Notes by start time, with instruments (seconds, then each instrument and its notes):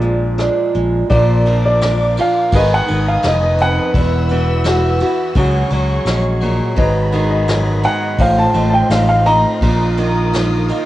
Already playing: fretless electric bass A#1, nylon-string guitar A#2 F3 D4 F4, steel-string acoustic guitar F3, upright piano F4 G#4 D5
0.01 nylon-string guitar G#3, closed hi-hat
0.38 steel-string acoustic guitar F3 G#3 D4, nylon-string guitar D4, cross-stick, closed hi-hat
0.74 fretless electric bass A#1, nylon-string guitar G#3, closed hi-hat
1.10 fretless electric bass A#1, nylon-string guitar A#2 F3 A#3 D4 F4, steel-string acoustic guitar F3, upright piano F4 D5, string section A#4 D5 F5 D6, kick, ride
1.46 nylon-string guitar F3, steel-string acoustic guitar F3 A#3 D4, ride
1.66 upright piano D5
1.81 nylon-string guitar D4, snare, ride
2.17 steel-string acoustic guitar F3 A#3 D4, nylon-string guitar F4, upright piano F5, ride
2.52 fretless electric bass G#1, nylon-string guitar G#2 D#3 D#4, steel-string acoustic guitar D#3, string section B4 D#5 G#5 D#6, upright piano B4 D#5, kick, ride
2.56 nylon-string guitar G#4
2.74 upright piano F#5
2.88 fretless electric bass G#1, nylon-string guitar D#3, steel-string acoustic guitar B3, ride
3.08 upright piano F5
3.22 fretless electric bass F1, steel-string acoustic guitar D#3 B3 D#4, upright piano D#5, snare, ride
3.43 upright piano D#5
3.58 nylon-string guitar F2, upright piano B4 F#5, ride
3.94 fretless electric bass E1, nylon-string guitar E2, steel-string acoustic guitar E3, string section E5 F#5 E6, kick, ride
4.29 nylon-string guitar E3, steel-string acoustic guitar B3 E4 F#4, ride
4.64 nylon-string guitar F#4, snare, ride
5.00 steel-string acoustic guitar B3 E4 F#4, nylon-string guitar F#4, ride
5.35 fretless electric bass C#2, nylon-string guitar C#3 F#3 G#3 C#4 F#4, steel-string acoustic guitar F#3, string section G#4 C#5 C#6, kick, ride
5.70 fretless electric bass C#2, nylon-string guitar F#3, steel-string acoustic guitar C#4, ride
6.05 fretless electric bass A#1, steel-string acoustic guitar G#3 C#4 G#4, snare, ride
6.41 nylon-string guitar A#2, ride
6.76 fretless electric bass G#1, nylon-string guitar G#2, steel-string acoustic guitar F#3, string section G#4 D#5 F#5 B5, upright piano B4 D#5, kick, ride
7.12 nylon-string guitar D#3, steel-string acoustic guitar B3 D#4 G#4, ride
7.30 upright piano D#5
7.48 nylon-string guitar F#2, snare, ride
7.83 nylon-string guitar G#2, steel-string acoustic guitar B3 D#4 G#4, upright piano F#5, ride
8.17 fretless electric bass A1, nylon-string guitar A2, steel-string acoustic guitar F3, string section C5 F5 C6, upright piano C5 F5, kick, ride
8.39 upright piano A5
8.54 fretless electric bass A1, nylon-string guitar A3, steel-string acoustic guitar D#4, ride
8.70 upright piano G5 A5
8.90 fretless electric bass A1, steel-string acoustic guitar C4 D#4, nylon-string guitar D#4, upright piano F5, snare, ride
9.09 upright piano F5
9.25 nylon-string guitar D#4, upright piano D#5 A#5, ride
9.61 fretless electric bass A#1, nylon-string guitar A#2, steel-string acoustic guitar F3, string section A#4 D#6, kick, ride
9.97 nylon-string guitar D#3, steel-string acoustic guitar A#3 D#4 A#4, ride
10.33 nylon-string guitar D#4, snare, ride
10.68 steel-string acoustic guitar A#3 D#4 A#4, nylon-string guitar F4, ride